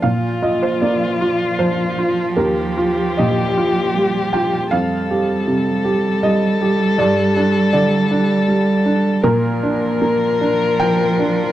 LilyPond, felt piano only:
\new Staff \with { instrumentName = "Felt piano" } { \time 3/4 \key bes \major \tempo 4 = 79 << { f''8 ees''16 c''16 d''4 c''4 | bes'4 ees''4. g''8 | f''2 ees''4 | d''4 d''4 r4 |
bes'2 g''4 | } \\ { bes,8 f'8 bes8 f'8 f8 f'8 | ees,8 f'8 bes,8 f'8 g8 f'8 | f,8 g'8 c8 g'8 g8 g'8 | g,8 d'8 d8 d'8 g8 d'8 |
bes,8 d'8 bes8 d'8 f8 d'8 | } >> }